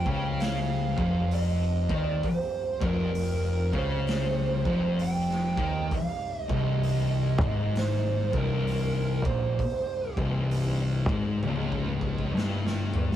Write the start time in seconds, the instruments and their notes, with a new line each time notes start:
Already playing: tonewheel organ F3 C4 G4, lead electric guitar G5
0.05 fingered electric bass C#2, distorted electric guitar C#3, kick
0.40 lead electric guitar F5, snare, open hi-hat
0.97 fingered electric bass F1, distorted electric guitar F2, kick
1.31 lead electric guitar D#5, open hi-hat
1.89 fingered electric bass D#2, distorted electric guitar D#3, kick
1.96 lead electric guitar D5
2.23 lead electric guitar C5, kick, open hi-hat
2.81 fingered electric bass F1, distorted electric guitar F2, lead electric guitar A#4, kick
3.15 open hi-hat
3.73 fingered electric bass C#2, distorted electric guitar C#3, lead electric guitar C5, kick
4.07 snare, open hi-hat
4.65 fingered electric bass F1, distorted electric guitar F2, kick
4.99 lead electric guitar G5, open hi-hat
5.30 snare
5.57 fingered electric bass D#2, distorted electric guitar D#3, kick
5.90 tonewheel organ C3 G3 D#4, lead electric guitar F5, kick, open hi-hat
6.49 fingered electric bass C1, distorted electric guitar C2, lead electric guitar D#5, kick
6.83 open hi-hat
7.41 fingered electric bass G#1, distorted electric guitar G#2, kick
7.75 lead electric guitar C5, snare, open hi-hat
8.32 fingered electric bass C1, distorted electric guitar C2, lead electric guitar A#4, kick
8.67 open hi-hat
9.25 fingered electric bass A#1, distorted electric guitar A#2, lead electric guitar C5, kick
9.59 kick, open hi-hat
10.17 fingered electric bass C1, distorted electric guitar C2, kick
10.51 open hi-hat
11.09 fingered electric bass G#1, distorted electric guitar G#2, kick
11.42 fingered electric bass C#1, distorted electric guitar C#2, high tom
11.72 kick
12.01 kick
12.18 kick
12.35 fingered electric bass G1, distorted electric guitar G2, snare
12.67 snare
12.94 floor tom
13.12 snare